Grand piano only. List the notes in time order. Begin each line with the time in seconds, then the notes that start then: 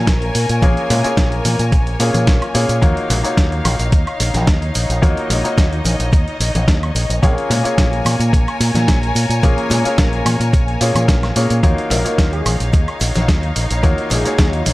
Already playing: A#3 C#4 F4 G#4 C#5
0.62 A#3 C#4 F4 G#4 C#5
1.03 A#3 C#4 F4 G#4 C#5
2.00 A#3 C#4 F4 G#4 C#5
2.54 A#3 C#4 F4 G#4 C#5
2.81 A#3 D#4 F4 F#4 C#5
3.23 A#3 D#4 F4 F#4 C#5
5.02 A#3 D#4 F4 F#4 C#5
5.44 A#3 D#4 F4 F#4 C#5
7.22 A#3 C#4 F4 G#4 C#5
7.63 A#3 C#4 F4 G#4 C#5
9.43 A#3 C#4 F4 G#4 C#5
9.84 A#3 C#4 F4 G#4 C#5
10.81 A#3 C#4 F4 G#4 C#5
11.36 A#3 C#4 F4 G#4 C#5
11.63 A#3 D#4 F4 F#4 C#5
12.04 A#3 D#4 F4 F#4 C#5
13.83 A#3 D#4 F4 F#4 C#5
14.25 A#3 D#4 F4 F#4 C#5